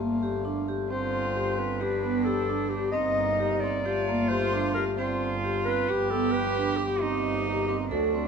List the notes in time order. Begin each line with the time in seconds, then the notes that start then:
Already playing: G1 A#2 A3 F4 G4
0.00 A#3
0.23 G4
0.45 D4
0.68 G4
0.91 G1 D3 C4 F4 G4 C5
1.35 G4
1.59 C4 B4
1.81 G1 F3 B3 D4 G4
2.04 B3
2.25 G4 A4
2.49 D4
2.70 G4
2.92 G1 C3 A#3 C4 D#4 D#5
3.39 G4
3.60 C4 D5
3.85 G1 A#2 A3 F4 G4
4.09 A#3
4.29 G4 C5
4.53 D4
4.74 G4 A#4
4.98 G1 D3 C4 F4 G4 C5
5.44 G4
5.65 C4 B4
5.89 G1 F3 B3 G4
6.11 B3 A4
6.32 G4 B4
6.58 D4
6.77 G4
7.01 G1 C3 A#3 C4 D#4
7.47 G4
7.67 C4 G4
7.90 D2 F#3 D4 F#4 A4
8.15 C4